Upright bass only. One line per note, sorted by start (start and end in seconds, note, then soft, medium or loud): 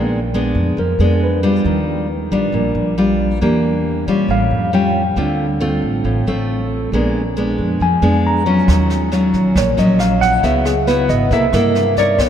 0.00 0.51 A#1 medium
0.55 0.76 F2 medium
0.77 0.98 F2 medium
0.99 1.61 F2 medium
1.64 2.27 D#2 medium
2.31 2.52 A#1 medium
2.52 2.73 A#1 medium
2.75 3.37 A#1 medium
3.41 4.03 E2 medium
4.07 4.27 A#2 medium
4.28 4.49 A1 medium
4.51 5.13 F2 medium
5.16 5.78 D2 medium
5.82 6.03 A1 medium
6.04 6.25 A1 medium
6.27 6.88 A1 medium
6.92 7.54 A#1 medium
7.59 7.79 F2 medium
7.80 8.01 F2 medium
8.02 8.64 F2 medium
8.68 9.30 D#2 medium
9.33 9.54 A#1 medium
9.56 9.76 A#1 medium
9.77 10.39 A#1 medium
10.43 11.05 C#2 medium
11.09 11.30 G#1 medium
11.31 11.52 C2 medium
11.53 12.15 G2 medium
12.19 12.29 B1 loud